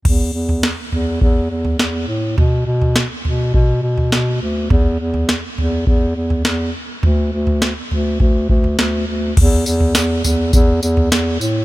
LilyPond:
<<
  \new Staff \with { instrumentName = "Bass clarinet" } { \clef bass \time 4/4 \key d \mixolydian \tempo 4 = 103 e,8 e,8. r16 e,8 e,8 e,8 e,8 a,8 | b,8 b,8. r16 b,8 b,8 b,8 b,8 d,8 | e,8 e,8. r16 e,8 e,8 e,8 e,8 r8 | d,8 d,8. r16 d,8 d,8 d,8 d,8 d,8 |
e,8 e,8 e,8 e,8 e,8 e,8 e,8 a,8 | }
  \new DrumStaff \with { instrumentName = "Drums" } \drummode { \time 4/4 <cymc bd tomfh>8. tomfh16 sn8 tomfh8 bd8. tomfh16 sn4 | tomfh8. tomfh16 sn8 tomfh8 bd8. tomfh16 sn4 | <bd tomfh>8. tomfh16 sn8 tomfh8 bd8. tomfh16 sn4 | tomfh8. tomfh16 sn8 tomfh8 <bd tomfh>8 bd16 tomfh16 sn4 |
<cymc bd tomfh>8 tamb16 tomfh16 <sn tamb>8 <tamb tomfh>8 <bd tamb>8 tamb16 tomfh16 <sn tamb>8 tamb8 | }
>>